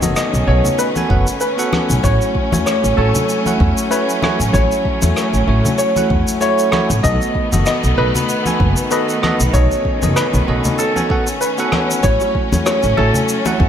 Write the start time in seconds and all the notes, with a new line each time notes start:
Already playing: D#3 A3 C#4 C#5
0.02 F#1 B3 F#4 A4 D#5, high conga, shaker
0.16 D#5, cross-stick, shaker
0.34 B1, shaker
0.47 B1 B3 F#4 A4 C#5 D#5
0.65 low conga, shaker
0.79 B4, shaker
0.96 B3 F#4 A4 G#5, high conga, shaker
1.09 F#1 B3 F#4 A4 F#5, kick
1.27 shaker
1.41 B4, shaker
1.57 B3 F#4 A4 F#5, shaker
1.73 cross-stick, high conga
1.90 B1, shaker
2.03 A1 F#3 A3 E4 F#4 C#5, kick, shaker
2.21 shaker
2.35 kick
2.51 E2 A3 E4 F#4 C#5, high conga, shaker
2.66 C#5, cross-stick, shaker
2.84 A1, shaker
2.97 A1 A3 E4 F#4 A4 C#5
3.15 low conga, shaker
3.29 shaker
3.45 A3 E4 F#4 F#5, high conga, shaker
3.60 E2, kick
3.77 shaker
3.90 A3 E4 F#4 B4 C#5, shaker
4.09 shaker
4.22 A3 E4 F#4 C#5, cross-stick, high conga
4.40 A1, shaker
4.53 A1 A3 E4 F#4 C#5, kick, shaker
4.72 shaker
4.85 kick
5.02 E2 A3 E4 F#4 C#5, high conga, shaker
5.16 cross-stick, shaker
5.33 A1, shaker
5.47 A1 A3 E4 F#4 C#5
5.65 low conga, shaker
5.78 C#5, shaker
5.96 A3 E4 F#4 F#5, high conga, shaker
6.10 E2, kick
6.28 shaker
6.40 A3 E4 F#4 C#5, shaker
6.59 shaker
6.72 A3 E4 F#4 C#5, cross-stick, high conga
6.90 A1, shaker
7.03 B1 D#3 B3 F#4 A4 D#5, kick, shaker
7.22 shaker
7.35 kick
7.52 F#1 B3 F#4 A4 D#5, high conga, shaker
7.66 D#5, cross-stick, shaker
7.84 B1, shaker
7.97 B1 B3 F#4 A4 B4 D#5
8.15 low conga, shaker
8.29 shaker
8.45 B3 F#4 A4 G#5, high conga, shaker
8.60 F#1, kick
8.77 shaker
8.90 B3 F#4 A4 B4 D#5, shaker
9.09 shaker
9.22 B3 F#4 A4 D#5, cross-stick, high conga
9.40 B1, shaker
9.53 B1 B3 C#4 F#4 A4 C#5 D#5, kick, shaker
9.71 shaker
9.85 kick
10.02 F#1 B3 F#4 A4 D#5, high conga, shaker
10.16 B4, cross-stick, shaker
10.34 B1, shaker
10.47 B1 B3 F#4 A4 D#5
10.64 low conga, shaker
10.78 A4, shaker
10.96 B3 F#4 A4 G#5, high conga, shaker
11.09 B3 F#4 A4 F#5, kick
11.27 shaker
11.41 B4, shaker
11.58 B3 F#4 A4 F#5, shaker
11.72 cross-stick, high conga
11.91 shaker
12.03 A1 F#3 A3 E4 F#4 C#5, kick, shaker
12.20 high bongo, shaker
12.35 kick
12.52 E2 A3 E4 F#4 C#5, high conga, shaker
12.66 C#5, cross-stick, high bongo, shaker
12.83 A1, shaker
12.97 A1 A3 E4 F#4 A4 C#5, high bongo
13.14 low conga, shaker
13.29 shaker
13.45 A3 E4 F#4 F#5, high bongo, high conga, shaker
13.60 E2, kick